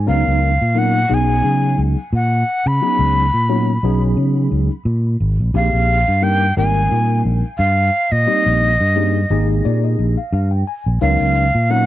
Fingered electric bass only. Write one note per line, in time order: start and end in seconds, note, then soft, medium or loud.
0.08 0.24 C#2 medium
0.27 0.57 C#2 medium
0.61 1.04 A#2 medium
1.11 1.40 B1 medium
1.45 1.74 C#3 medium
1.78 1.94 C#2 medium
2.13 2.42 A#2 medium
2.66 2.79 C#3 medium
2.99 3.29 C#2 medium
3.34 3.77 A#2 medium
3.83 4.13 B1 medium
4.17 4.47 C#3 medium
4.52 4.68 C#2 medium
4.85 5.15 A#2 medium
5.20 5.37 G#1 medium
5.39 5.53 A#1 medium
5.54 5.70 A#1 loud
5.73 6.03 A#1 medium
6.08 6.51 G2 medium
6.57 6.87 G#1 medium
6.92 7.21 A#2 medium
7.25 7.41 A#1 medium
7.59 7.89 G2 medium
8.12 8.26 A#2 medium
8.46 8.76 A#1 medium
8.80 9.24 G2 medium
9.30 9.60 G#1 medium
9.66 9.95 A#2 medium
9.99 10.15 A#1 medium
10.33 10.62 G2 medium
10.86 11.00 A#1 medium
11.02 11.18 C#2 loud
11.20 11.50 C#2 medium
11.55 11.86 A#2 medium